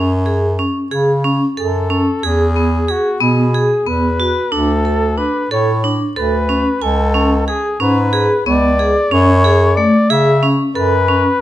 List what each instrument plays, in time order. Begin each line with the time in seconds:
Already playing: bass clarinet F#2, vibraphone C#4
0.26 vibraphone G#4
0.59 vibraphone C#4
0.91 bass clarinet C#3, vibraphone G#4
1.24 vibraphone C#4
1.57 bass clarinet F#2, vibraphone A4, flugelhorn A4
1.90 vibraphone C#4
2.23 bass clarinet E2, vibraphone G#4, flugelhorn G#4
2.56 vibraphone B3
2.88 flugelhorn F#4, vibraphone G#4
3.21 bass clarinet B2, vibraphone B3, flugelhorn G#4
3.54 vibraphone G#4
3.87 bass clarinet E2, vibraphone B3, flugelhorn B4
4.20 vibraphone F#4
4.52 bass clarinet D2, vibraphone D4, flugelhorn A4
4.85 vibraphone A4
5.18 vibraphone D4, flugelhorn B4
5.50 bass clarinet A2, vibraphone A4, flugelhorn C#5
5.84 vibraphone D4
6.16 bass clarinet D2, vibraphone A4, flugelhorn B4
6.49 vibraphone C#4
6.82 bass clarinet C#2, flugelhorn A4, vibraphone G#5
7.14 vibraphone C#4
7.47 flugelhorn G#4, vibraphone G#4
7.80 bass clarinet G#2, vibraphone C#4, flugelhorn B4
8.13 vibraphone G#4
8.46 bass clarinet C#2, vibraphone B3, flugelhorn D5
8.79 vibraphone G#4
9.11 bass clarinet F#2, vibraphone C#4, flugelhorn C#5
9.44 vibraphone G#4
9.76 vibraphone A3, flugelhorn D5
10.10 bass clarinet C#3, vibraphone G#4, flugelhorn E5
10.43 vibraphone C#4
10.75 bass clarinet F#2, vibraphone A4, flugelhorn B4
11.08 vibraphone C#4